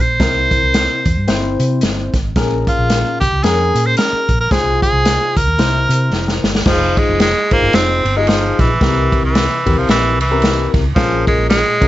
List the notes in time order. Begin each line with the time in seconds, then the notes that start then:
Already playing: A#1
0.00 C5
0.20 C2 C3 C4 E4 A#4, kick, snare, closed hi-hat
0.51 kick, closed hi-hat
0.63 C2
0.74 snare, closed hi-hat
1.05 E2, kick, closed hi-hat
1.17 G2
1.28 G1 C4 E4 C5, snare, closed hi-hat
1.60 C3, closed hi-hat
1.81 G1, snare, closed hi-hat
2.14 G#1, kick, snare, closed hi-hat
2.36 A#1 A#2 C#4 G#4 A#4, kick, snare, closed hi-hat
2.67 F4, kick, closed hi-hat
2.79 A#1
2.90 snare, closed hi-hat
3.20 C2 G4, kick, closed hi-hat
3.32 C#2
3.43 F2 C#4 G#4 A#4, snare, closed hi-hat
3.75 A#2, closed hi-hat
3.86 C5
3.97 A#4, snare, closed hi-hat
4.13 muted fingered electric bass stroke
4.29 A#1, kick, closed hi-hat
4.40 A#4
4.51 C2 C3 F4 G#4 C5, kick, snare, closed hi-hat
4.82 G#4, kick, closed hi-hat
4.93 C2
5.05 snare, closed hi-hat
5.36 C#2 A#4, kick, closed hi-hat
5.47 D#2
5.58 C2 C3 E4 A#4 C5, snare, closed hi-hat
5.89 C3, closed hi-hat
6.12 F1, snare
6.28 snare
6.44 G1, snare
6.55 snare
6.65 F1 F3 D#4 F4 G#4 C5, kick, snare, crash
6.97 G#3, kick, ride
7.09 F1
7.20 G#3, snare, ride
7.51 G#1 A#3 D#4 F4 G#4 C5, kick, ride
7.62 G1
7.73 F1 C4, snare, ride
8.05 G1, ride
8.17 G#3 D#4 F4 G4 D#5
8.23 G#4, ride
8.28 F3, snare
8.59 A#1 E3, kick, snare, ride
8.81 C2 C3 C4 E4 G4 A#4, kick, snare, ride
9.12 kick, ride
9.23 C2 E3
9.35 snare, ride
9.66 E2 C4 E4 G4 A#4, kick, ride
9.77 C2 F3
9.88 A#1 E3, snare, ride
10.20 C2 E3, ride
10.31 C4 C#4 G4 A#4
10.38 E4, ride
10.44 snare
10.74 C#2, kick, snare, ride
10.95 A#1 A#2 F3 C#4 F4 G#4 A#4, kick, snare, ride
11.27 G#3, kick, ride
11.38 A#1
11.49 G#3, snare, ride
11.81 C2 C#4 F4 G#4 A#4, kick, ride